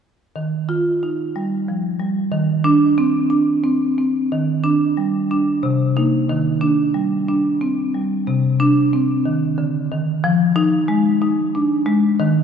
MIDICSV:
0, 0, Header, 1, 2, 480
1, 0, Start_track
1, 0, Key_signature, -3, "major"
1, 0, Tempo, 652174
1, 264, Time_signature, 3, 2, 24, 8
1, 2181, Tempo, 678733
1, 3141, Tempo, 657895
1, 6981, Tempo, 650759
1, 9084, End_track
2, 0, Start_track
2, 0, Title_t, "Marimba"
2, 0, Program_c, 0, 12
2, 262, Note_on_c, 0, 51, 43
2, 506, Note_on_c, 0, 65, 46
2, 758, Note_on_c, 0, 63, 32
2, 896, Note_off_c, 0, 65, 0
2, 999, Note_on_c, 0, 55, 39
2, 1140, Note_off_c, 0, 63, 0
2, 1240, Note_on_c, 0, 53, 33
2, 1376, Note_off_c, 0, 55, 0
2, 1468, Note_on_c, 0, 55, 41
2, 1471, Note_off_c, 0, 53, 0
2, 1672, Note_off_c, 0, 51, 0
2, 1703, Note_off_c, 0, 55, 0
2, 1705, Note_on_c, 0, 51, 57
2, 1946, Note_on_c, 0, 62, 65
2, 2192, Note_on_c, 0, 60, 44
2, 2324, Note_off_c, 0, 62, 0
2, 2420, Note_on_c, 0, 62, 44
2, 2566, Note_off_c, 0, 60, 0
2, 2656, Note_on_c, 0, 60, 43
2, 2805, Note_off_c, 0, 62, 0
2, 2893, Note_off_c, 0, 60, 0
2, 2901, Note_on_c, 0, 60, 37
2, 3114, Note_off_c, 0, 51, 0
2, 3141, Note_off_c, 0, 60, 0
2, 3141, Note_on_c, 0, 51, 49
2, 3371, Note_on_c, 0, 62, 52
2, 3617, Note_on_c, 0, 55, 39
2, 3759, Note_off_c, 0, 62, 0
2, 3862, Note_on_c, 0, 62, 42
2, 4003, Note_off_c, 0, 55, 0
2, 4072, Note_off_c, 0, 51, 0
2, 4096, Note_on_c, 0, 48, 53
2, 4102, Note_off_c, 0, 62, 0
2, 4342, Note_on_c, 0, 63, 50
2, 4343, Note_on_c, 0, 58, 32
2, 4557, Note_off_c, 0, 58, 0
2, 4557, Note_off_c, 0, 63, 0
2, 4563, Note_off_c, 0, 48, 0
2, 4581, Note_on_c, 0, 51, 51
2, 4812, Note_on_c, 0, 62, 51
2, 5054, Note_on_c, 0, 55, 39
2, 5200, Note_off_c, 0, 62, 0
2, 5303, Note_on_c, 0, 62, 42
2, 5441, Note_off_c, 0, 55, 0
2, 5542, Note_on_c, 0, 60, 36
2, 5686, Note_off_c, 0, 62, 0
2, 5782, Note_off_c, 0, 60, 0
2, 5784, Note_on_c, 0, 55, 36
2, 5993, Note_off_c, 0, 51, 0
2, 6023, Note_off_c, 0, 55, 0
2, 6024, Note_on_c, 0, 48, 56
2, 6263, Note_on_c, 0, 62, 57
2, 6505, Note_on_c, 0, 60, 43
2, 6646, Note_off_c, 0, 62, 0
2, 6741, Note_on_c, 0, 51, 44
2, 6888, Note_off_c, 0, 60, 0
2, 6977, Note_on_c, 0, 50, 41
2, 7127, Note_off_c, 0, 51, 0
2, 7222, Note_off_c, 0, 50, 0
2, 7225, Note_on_c, 0, 51, 43
2, 7437, Note_off_c, 0, 48, 0
2, 7464, Note_on_c, 0, 53, 61
2, 7466, Note_off_c, 0, 51, 0
2, 7699, Note_on_c, 0, 63, 63
2, 7939, Note_on_c, 0, 56, 47
2, 8087, Note_off_c, 0, 63, 0
2, 8186, Note_on_c, 0, 63, 45
2, 8328, Note_off_c, 0, 56, 0
2, 8431, Note_on_c, 0, 62, 44
2, 8570, Note_off_c, 0, 63, 0
2, 8660, Note_on_c, 0, 56, 49
2, 8667, Note_off_c, 0, 62, 0
2, 8873, Note_off_c, 0, 53, 0
2, 8900, Note_off_c, 0, 56, 0
2, 8908, Note_on_c, 0, 51, 66
2, 9084, Note_off_c, 0, 51, 0
2, 9084, End_track
0, 0, End_of_file